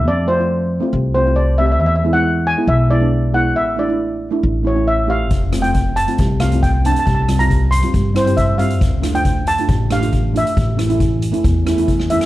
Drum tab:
HH |----------------|----------------|----------------|x-xxx-xxx-xxx-xx|
SD |----------------|----------------|----------------|--r-------r-----|
BD |----------------|----------------|----------------|o---o---o---o---|

HH |x-xxx-xxx-xxx-xx|x-xxx-xxx-xxx-xx|x-xxx-xxx-xxx-xx|
SD |--r-------r-----|--r-------r-----|--r-------r--r-r|
BD |o---o---o---o---|o---o---o---o---|o---o---o---o---|